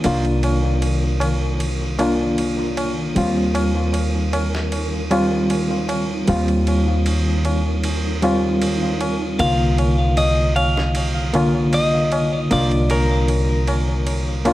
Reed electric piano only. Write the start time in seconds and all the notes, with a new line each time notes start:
Already playing: A#3 D4 F4
0.04 A#3 D4 F4
1.99 A#3 D4 F4
3.15 G3 C4 F4
5.10 G3 C4 F4
6.28 G3 C4 F4
8.22 G3 C4 F4
9.39 D3 A#3 F4
11.33 D3 A#3 F4
12.50 A#3 D4 F4
14.45 A#3 D4 F4